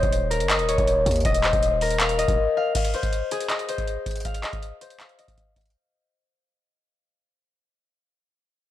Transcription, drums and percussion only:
0.03 kick loud
0.03 closed hi-hat medium
0.13 closed hi-hat medium
0.31 closed hi-hat medium
0.40 closed hi-hat medium
0.50 clap loud
0.50 closed hi-hat medium
0.59 closed hi-hat medium
0.69 closed hi-hat medium
0.78 kick loud
0.78 closed hi-hat medium
0.87 closed hi-hat medium
1.06 kick loud
1.06 closed hi-hat medium
1.11 closed hi-hat medium
1.16 closed hi-hat medium
1.20 closed hi-hat medium
1.25 kick loud
1.25 closed hi-hat medium
1.34 closed hi-hat medium
1.44 clap medium
1.44 closed hi-hat medium
1.53 kick loud
1.53 closed hi-hat soft
1.63 closed hi-hat medium
1.81 open hi-hat medium
1.90 closed hi-hat medium
2.00 clap loud
2.00 closed hi-hat medium
2.09 closed hi-hat medium
2.19 closed hi-hat medium
2.28 kick loud
2.28 closed hi-hat medium
2.75 kick loud
2.75 closed hi-hat medium
2.75 crash medium
2.85 closed hi-hat medium
2.94 closed hi-hat soft
3.03 kick medium
3.03 closed hi-hat soft
3.13 closed hi-hat medium
3.31 closed hi-hat medium
3.40 closed hi-hat medium
3.50 clap loud
3.50 closed hi-hat medium
3.59 closed hi-hat medium
3.69 closed hi-hat medium
3.78 kick medium
3.78 closed hi-hat medium
3.88 closed hi-hat medium
4.06 kick loud
4.06 closed hi-hat medium
4.11 closed hi-hat medium
4.16 closed hi-hat medium
4.20 closed hi-hat medium
4.25 kick loud
4.25 closed hi-hat medium
4.34 closed hi-hat medium
4.44 clap medium
4.44 closed hi-hat soft
4.53 kick medium
4.53 closed hi-hat soft
4.63 closed hi-hat medium
4.81 closed hi-hat medium
4.90 closed hi-hat medium
5.00 clap loud
5.00 closed hi-hat medium
5.09 closed hi-hat medium
5.19 closed hi-hat medium
5.28 kick medium
5.28 closed hi-hat medium
5.37 kick medium
5.37 closed hi-hat medium
5.56 kick medium
5.56 closed hi-hat medium
5.61 closed hi-hat medium
5.66 closed hi-hat medium
5.70 closed hi-hat medium

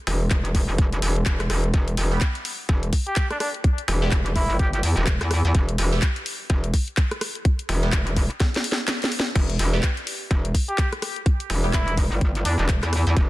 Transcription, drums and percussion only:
0.07 open hi-hat loud
0.30 kick loud
0.30 clap loud
0.30 closed hi-hat medium
0.45 closed hi-hat soft
0.55 kick medium
0.55 open hi-hat loud
0.78 kick loud
0.78 closed hi-hat medium
0.93 closed hi-hat soft
1.02 open hi-hat loud
1.16 closed hi-hat soft
1.26 kick loud
1.26 clap loud
1.26 closed hi-hat medium
1.40 cross-stick medium
1.40 clap soft
1.40 closed hi-hat soft
1.50 cross-stick medium
1.50 open hi-hat loud
1.64 closed hi-hat soft
1.74 kick loud
1.74 closed hi-hat medium
1.88 closed hi-hat medium
1.97 open hi-hat loud
2.21 kick loud
2.21 clap loud
2.21 closed hi-hat medium
2.35 closed hi-hat soft
2.45 open hi-hat loud
2.69 kick loud
2.69 closed hi-hat medium
2.83 closed hi-hat soft
2.93 kick medium
2.93 open hi-hat loud
3.07 closed hi-hat soft
3.16 kick loud
3.16 clap loud
3.16 closed hi-hat medium
3.31 cross-stick medium
3.31 closed hi-hat soft
3.40 cross-stick medium
3.40 open hi-hat loud
3.54 closed hi-hat soft
3.64 kick loud
3.64 closed hi-hat medium
3.78 closed hi-hat medium
3.88 open hi-hat loud
4.11 kick loud
4.11 clap loud
4.11 closed hi-hat medium
4.26 closed hi-hat soft
4.36 kick medium
4.36 open hi-hat loud
4.59 kick loud
4.59 closed hi-hat medium
4.73 closed hi-hat medium
4.83 open hi-hat loud
4.97 closed hi-hat soft
5.07 kick loud
5.07 clap loud
5.07 closed hi-hat medium
5.21 cross-stick medium
5.21 clap soft
5.21 closed hi-hat medium
5.31 cross-stick medium
5.31 open hi-hat loud
5.45 closed hi-hat soft
5.55 kick loud
5.55 closed hi-hat medium
5.69 closed hi-hat medium
5.78 open hi-hat loud
6.02 kick loud
6.02 clap loud
6.02 closed hi-hat medium
6.16 closed hi-hat medium
6.26 open hi-hat loud
6.50 kick loud
6.50 closed hi-hat medium
6.64 closed hi-hat medium
6.74 kick medium
6.74 open hi-hat loud
6.88 closed hi-hat soft
6.97 kick loud
6.97 clap loud
6.97 closed hi-hat medium
7.11 cross-stick medium
7.11 closed hi-hat medium
7.21 cross-stick medium
7.21 open hi-hat loud
7.35 closed hi-hat soft
7.45 kick loud
7.45 closed hi-hat medium
7.59 closed hi-hat medium
7.69 open hi-hat loud
7.83 closed hi-hat soft
7.92 kick loud
7.92 clap loud
7.92 closed hi-hat medium
8.07 closed hi-hat medium
8.17 kick medium
8.17 open hi-hat loud
8.31 closed hi-hat soft
8.40 kick loud
8.40 snare medium
8.40 closed hi-hat medium
8.54 snare medium
8.54 closed hi-hat medium
8.64 open hi-hat loud
8.72 snare medium
8.78 closed hi-hat soft
8.88 snare medium
8.88 clap loud
8.88 closed hi-hat medium
9.02 snare medium
9.02 closed hi-hat medium
9.12 open hi-hat loud
9.20 snare loud
9.26 closed hi-hat soft
9.36 kick loud
9.36 closed hi-hat medium
9.36 crash medium
9.50 closed hi-hat medium
9.59 open hi-hat loud
9.83 kick loud
9.83 clap loud
9.83 closed hi-hat medium
9.97 closed hi-hat medium
10.07 open hi-hat loud
10.31 kick loud
10.31 closed hi-hat medium
10.45 closed hi-hat medium
10.55 kick medium
10.55 open hi-hat loud
10.69 closed hi-hat soft
10.78 kick loud
10.78 clap loud
10.78 closed hi-hat medium
10.93 cross-stick medium
10.93 closed hi-hat medium
11.02 cross-stick medium
11.02 open hi-hat loud
11.16 closed hi-hat soft
11.26 kick loud
11.26 closed hi-hat medium
11.40 closed hi-hat medium
11.50 open hi-hat loud
11.73 kick loud
11.73 clap loud
11.73 closed hi-hat medium
11.88 closed hi-hat medium
11.97 kick medium
11.97 open hi-hat loud
12.21 kick loud
12.21 closed hi-hat medium
12.35 closed hi-hat medium
12.45 open hi-hat loud
12.59 closed hi-hat soft
12.69 kick loud
12.69 clap loud
12.69 closed hi-hat medium
12.83 cross-stick medium
12.83 clap soft
12.83 closed hi-hat medium
12.93 cross-stick medium
12.93 open hi-hat loud
13.07 closed hi-hat soft
13.17 kick loud
13.17 closed hi-hat medium

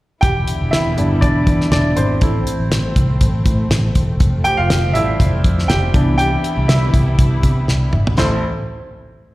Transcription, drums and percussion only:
0.23 kick medium
0.23 closed hi-hat medium
0.48 closed hi-hat medium
0.73 snare loud
0.73 closed hi-hat medium
0.98 closed hi-hat medium
1.22 kick medium
1.22 closed hi-hat medium
1.47 kick medium
1.47 closed hi-hat medium
1.61 snare soft
1.72 snare medium
1.72 closed hi-hat medium
1.97 closed hi-hat medium
2.21 kick medium
2.21 closed hi-hat medium
2.47 closed hi-hat medium
2.72 snare loud
2.72 closed hi-hat medium
2.96 kick medium
2.96 closed hi-hat medium
3.21 kick medium
3.21 closed hi-hat medium
3.46 kick medium
3.46 closed hi-hat medium
3.71 snare medium
3.71 closed hi-hat medium
3.95 kick medium
3.95 closed hi-hat medium
4.20 kick loud
4.20 closed hi-hat medium
4.45 closed hi-hat medium
4.70 snare loud
4.70 closed hi-hat medium
4.95 closed hi-hat medium
5.20 kick medium
5.20 closed hi-hat medium
5.44 kick medium
5.44 closed hi-hat medium
5.59 snare soft
5.70 snare loud
5.70 closed hi-hat medium
5.94 kick medium
5.94 closed hi-hat medium
6.19 closed hi-hat medium
6.44 closed hi-hat medium
6.69 snare loud
6.69 closed hi-hat medium
6.94 kick medium
6.94 closed hi-hat medium
7.19 kick medium
7.19 closed hi-hat medium
7.43 kick medium
7.43 closed hi-hat medium
7.68 snare medium
7.93 mid tom medium
8.07 floor tom medium
8.18 snare medium
8.18 floor tom medium
8.18 splash medium

